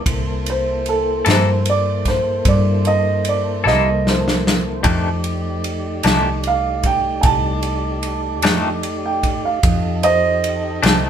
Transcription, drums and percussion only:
0.06 kick, ride
0.46 ride
0.86 ride
1.26 snare, ride
1.66 ride
2.05 kick, snare, ride
2.45 kick, ride
2.85 ride
3.25 ride
3.67 snare
4.07 snare
4.28 snare
4.47 snare
4.84 kick, ride
5.24 ride
5.64 ride
6.03 snare, ride
6.43 ride
6.83 kick, ride
7.23 kick, ride
7.63 ride
8.03 ride
8.42 snare, ride
8.83 ride
9.23 kick, ride
9.63 kick, ride
10.03 ride
10.44 ride
10.83 snare, ride

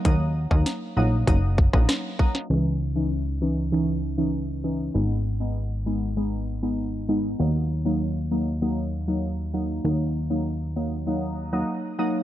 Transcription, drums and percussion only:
0.05 kick, closed hi-hat
0.51 kick
0.66 snare, closed hi-hat
1.27 kick, closed hi-hat
1.58 kick
1.73 kick, cross-stick
1.89 cross-stick, snare, closed hi-hat
2.19 kick
2.35 snare

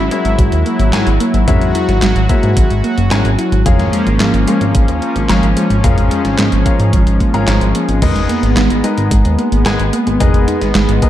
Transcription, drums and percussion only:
0.11 closed hi-hat
0.25 closed hi-hat
0.39 kick, closed hi-hat
0.52 closed hi-hat
0.66 closed hi-hat
0.80 closed hi-hat
0.93 snare, clap, closed hi-hat
1.07 closed hi-hat
1.20 closed hi-hat
1.34 closed hi-hat
1.48 kick, closed hi-hat, mid tom
1.61 closed hi-hat
1.75 closed hi-hat
1.89 snare, closed hi-hat
2.02 snare, clap, closed hi-hat
2.16 closed hi-hat
2.29 kick, closed hi-hat
2.43 closed hi-hat
2.57 kick, closed hi-hat
2.70 closed hi-hat
2.84 closed hi-hat
2.98 closed hi-hat
3.11 snare, clap, closed hi-hat
3.25 closed hi-hat
3.39 closed hi-hat
3.52 closed hi-hat
3.66 kick, closed hi-hat, mid tom
3.79 snare, closed hi-hat
3.93 closed hi-hat
4.07 closed hi-hat
4.20 snare, clap, closed hi-hat
4.34 closed hi-hat
4.48 closed hi-hat
4.61 closed hi-hat
4.75 kick, closed hi-hat
4.88 closed hi-hat
5.02 closed hi-hat
5.16 closed hi-hat
5.29 snare, clap, closed hi-hat
5.43 closed hi-hat
5.57 closed hi-hat
5.70 closed hi-hat
5.84 kick, closed hi-hat, mid tom
5.98 closed hi-hat
6.11 closed hi-hat
6.25 snare, closed hi-hat
6.38 snare, clap, closed hi-hat
6.52 closed hi-hat
6.66 kick, closed hi-hat
6.80 closed hi-hat
6.93 kick, closed hi-hat
7.07 closed hi-hat
7.20 kick, closed hi-hat
7.34 closed hi-hat
7.48 snare, clap, closed hi-hat
7.61 closed hi-hat
7.75 closed hi-hat
7.89 closed hi-hat
8.02 kick, closed hi-hat, mid tom, crash
8.16 snare, closed hi-hat
8.29 closed hi-hat
8.43 closed hi-hat
8.57 snare, clap, closed hi-hat
8.70 closed hi-hat
8.84 closed hi-hat
8.98 closed hi-hat
9.11 kick, closed hi-hat
9.25 closed hi-hat
9.39 closed hi-hat
9.52 closed hi-hat
9.66 snare, clap, closed hi-hat
9.80 closed hi-hat
9.93 closed hi-hat
10.07 closed hi-hat
10.20 kick, closed hi-hat, mid tom
10.34 closed hi-hat
10.48 closed hi-hat
10.61 snare, closed hi-hat
10.75 snare, clap, closed hi-hat
10.89 closed hi-hat
11.02 kick, closed hi-hat

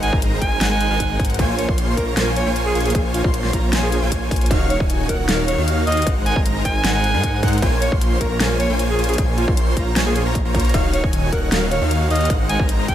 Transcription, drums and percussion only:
0.03 closed hi-hat
0.13 kick
0.22 closed hi-hat
0.42 kick, closed hi-hat
0.61 snare, closed hi-hat
0.81 closed hi-hat
1.00 kick, closed hi-hat
1.19 kick, closed hi-hat
1.25 closed hi-hat
1.30 closed hi-hat
1.34 closed hi-hat
1.39 kick, closed hi-hat
1.59 closed hi-hat
1.69 kick
1.78 closed hi-hat
1.97 kick, closed hi-hat
2.17 snare, closed hi-hat
2.36 closed hi-hat
2.56 closed hi-hat
2.75 closed hi-hat
2.80 closed hi-hat
2.86 closed hi-hat
2.90 closed hi-hat
2.95 kick, closed hi-hat
3.14 closed hi-hat
3.24 kick
3.34 closed hi-hat
3.44 snare
3.53 kick, closed hi-hat
3.73 snare, closed hi-hat
3.92 closed hi-hat
4.12 kick, closed hi-hat
4.31 kick, open hi-hat
4.36 closed hi-hat
4.41 closed hi-hat
4.46 closed hi-hat
4.51 kick, closed hi-hat
4.70 closed hi-hat
4.80 kick
4.90 closed hi-hat
5.09 kick, closed hi-hat
5.29 snare, closed hi-hat
5.48 closed hi-hat
5.68 closed hi-hat
5.87 closed hi-hat
5.92 closed hi-hat
5.97 closed hi-hat
6.02 closed hi-hat
6.07 kick, closed hi-hat
6.26 closed hi-hat
6.36 kick
6.46 closed hi-hat
6.65 kick, closed hi-hat
6.84 snare, closed hi-hat
7.04 closed hi-hat
7.23 kick, closed hi-hat
7.43 kick, closed hi-hat
7.48 closed hi-hat
7.53 closed hi-hat
7.58 closed hi-hat
7.62 kick, closed hi-hat
7.82 closed hi-hat
7.92 kick
8.01 closed hi-hat
8.21 kick, closed hi-hat
8.40 snare, closed hi-hat
8.60 closed hi-hat
8.79 closed hi-hat
8.99 closed hi-hat
9.04 closed hi-hat
9.09 closed hi-hat
9.14 closed hi-hat
9.18 kick, closed hi-hat
9.38 closed hi-hat
9.48 kick
9.57 closed hi-hat
9.77 kick, closed hi-hat
9.96 snare, closed hi-hat
10.16 closed hi-hat
10.35 kick, closed hi-hat
10.55 kick, closed hi-hat
10.60 closed hi-hat
10.65 closed hi-hat
10.69 closed hi-hat
10.74 kick, closed hi-hat
10.94 closed hi-hat
11.04 kick
11.13 closed hi-hat
11.33 kick, closed hi-hat
11.52 snare, closed hi-hat
11.71 closed hi-hat
11.91 closed hi-hat
12.11 closed hi-hat
12.16 closed hi-hat
12.21 closed hi-hat
12.25 closed hi-hat
12.30 kick, closed hi-hat
12.49 closed hi-hat
12.60 kick
12.69 closed hi-hat
12.88 kick, closed hi-hat

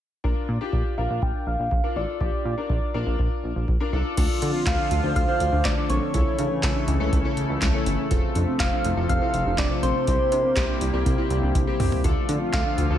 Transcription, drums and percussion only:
0.24 kick
0.73 kick
1.22 kick
1.71 kick
2.21 kick
2.70 kick
3.19 kick
3.68 kick
4.17 kick, closed hi-hat, crash
4.42 closed hi-hat
4.66 kick, snare, clap, closed hi-hat
4.91 closed hi-hat
5.16 kick, closed hi-hat
5.40 closed hi-hat
5.65 kick, snare, clap, closed hi-hat
5.90 closed hi-hat
6.14 kick, closed hi-hat
6.39 closed hi-hat
6.63 kick, snare, clap, closed hi-hat
6.88 closed hi-hat
7.12 kick, closed hi-hat
7.37 closed hi-hat
7.62 kick, snare, clap, closed hi-hat
7.86 closed hi-hat
8.11 kick, closed hi-hat
8.35 closed hi-hat
8.60 kick, snare, clap, closed hi-hat
8.85 closed hi-hat
9.09 kick, closed hi-hat
9.34 closed hi-hat
9.58 kick, snare, clap, closed hi-hat
9.83 closed hi-hat
10.07 kick, closed hi-hat
10.32 closed hi-hat
10.56 kick, snare, clap, closed hi-hat
10.81 closed hi-hat
11.06 kick, closed hi-hat
11.30 closed hi-hat
11.55 kick, closed hi-hat, high tom
11.80 mid tom, open hi-hat
11.92 floor tom
12.04 kick, closed hi-hat
12.29 closed hi-hat
12.53 kick, snare, clap, closed hi-hat
12.78 closed hi-hat

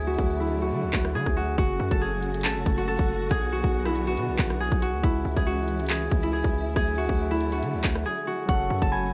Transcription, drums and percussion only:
0.19 kick
0.93 kick, clap
1.05 cross-stick
1.26 kick
1.58 kick, closed hi-hat
1.91 kick, closed hi-hat
2.22 closed hi-hat
2.34 closed hi-hat
2.41 clap, closed hi-hat
2.48 closed hi-hat
2.66 kick, closed hi-hat
2.78 closed hi-hat
2.99 kick
3.31 kick, closed hi-hat
3.64 kick
3.85 cross-stick
3.96 closed hi-hat
4.07 closed hi-hat
4.17 closed hi-hat
4.39 kick, clap
4.50 cross-stick
4.72 kick, closed hi-hat
4.82 closed hi-hat
5.04 kick, closed hi-hat
5.37 kick, closed hi-hat
5.68 closed hi-hat
5.80 closed hi-hat
5.86 clap, closed hi-hat
5.94 closed hi-hat
6.11 kick, closed hi-hat
6.23 closed hi-hat
6.44 kick
6.76 kick, closed hi-hat
7.09 kick
7.41 closed hi-hat
7.52 closed hi-hat
7.63 closed hi-hat
7.84 kick, clap
7.95 cross-stick
8.49 kick, closed hi-hat
8.82 kick, closed hi-hat

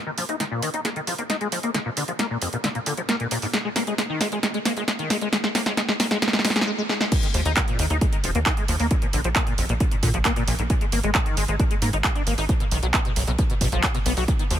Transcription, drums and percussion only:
0.18 open hi-hat
0.29 closed hi-hat
0.40 snare, closed hi-hat
0.62 open hi-hat
0.74 closed hi-hat
0.85 snare, closed hi-hat
0.96 closed hi-hat
1.07 open hi-hat
1.18 closed hi-hat
1.30 snare, closed hi-hat
1.41 closed hi-hat
1.52 open hi-hat
1.63 closed hi-hat
1.74 snare, closed hi-hat
1.97 open hi-hat
2.08 closed hi-hat
2.19 snare, closed hi-hat
2.42 open hi-hat
2.53 closed hi-hat
2.64 snare, closed hi-hat
2.75 closed hi-hat
2.86 open hi-hat
2.97 closed hi-hat
3.09 snare, closed hi-hat
3.20 closed hi-hat
3.31 open hi-hat
3.42 open hi-hat
3.53 snare, closed hi-hat
3.76 snare, open hi-hat
3.87 closed hi-hat
3.98 snare, closed hi-hat
4.21 snare, open hi-hat
4.32 closed hi-hat
4.43 snare, closed hi-hat
4.54 closed hi-hat
4.65 snare, open hi-hat
4.77 closed hi-hat
4.88 snare, closed hi-hat
4.99 closed hi-hat
5.10 snare, open hi-hat
5.21 closed hi-hat
5.33 snare, closed hi-hat
5.44 snare
5.55 snare, open hi-hat
5.66 snare, closed hi-hat
5.77 snare, closed hi-hat
5.89 snare
6.00 snare, open hi-hat
6.11 snare, closed hi-hat
6.22 snare, closed hi-hat
6.28 snare
6.33 snare, closed hi-hat
6.39 snare
6.45 snare, open hi-hat
6.50 snare
6.56 snare, closed hi-hat
6.61 snare
6.89 snare
7.01 snare
7.12 kick, closed hi-hat, crash
7.23 closed hi-hat
7.34 open hi-hat
7.45 closed hi-hat
7.57 kick, clap, closed hi-hat
7.68 closed hi-hat
7.79 open hi-hat
7.90 closed hi-hat
8.01 kick, closed hi-hat
8.13 closed hi-hat
8.24 open hi-hat
8.35 closed hi-hat
8.46 kick, clap, closed hi-hat
8.57 closed hi-hat
8.68 open hi-hat
8.80 open hi-hat
8.91 kick, closed hi-hat
9.02 closed hi-hat
9.13 open hi-hat
9.24 closed hi-hat
9.36 kick, clap, closed hi-hat
9.47 closed hi-hat
9.58 open hi-hat
9.69 closed hi-hat
9.80 kick, closed hi-hat
9.91 closed hi-hat
10.03 kick, open hi-hat
10.14 closed hi-hat
10.25 kick, clap, closed hi-hat
10.36 closed hi-hat
10.48 open hi-hat
10.59 closed hi-hat
10.70 kick, closed hi-hat
10.81 closed hi-hat
10.92 open hi-hat
11.03 closed hi-hat
11.15 kick, clap, closed hi-hat
11.26 closed hi-hat
11.37 open hi-hat
11.48 closed hi-hat
11.60 kick, closed hi-hat
11.71 closed hi-hat
11.82 open hi-hat
11.93 closed hi-hat
12.04 kick, clap, closed hi-hat
12.16 closed hi-hat
12.27 open hi-hat
12.38 open hi-hat
12.49 kick, closed hi-hat
12.60 closed hi-hat
12.71 open hi-hat
12.83 closed hi-hat
12.94 kick, clap, closed hi-hat
13.05 closed hi-hat
13.16 open hi-hat
13.27 closed hi-hat
13.39 kick, closed hi-hat
13.50 closed hi-hat
13.61 kick, open hi-hat
13.72 closed hi-hat
13.83 kick, clap, closed hi-hat
13.95 closed hi-hat
14.06 open hi-hat
14.17 open hi-hat
14.28 kick, closed hi-hat
14.39 closed hi-hat
14.51 open hi-hat

